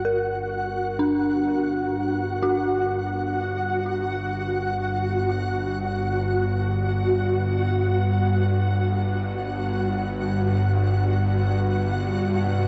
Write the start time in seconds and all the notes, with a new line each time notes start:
Already playing: G1 G2 F#4 F#5
0.05 A#4
0.99 D4
2.42 F#4
10.98 G3 F#4 F#5
11.81 C4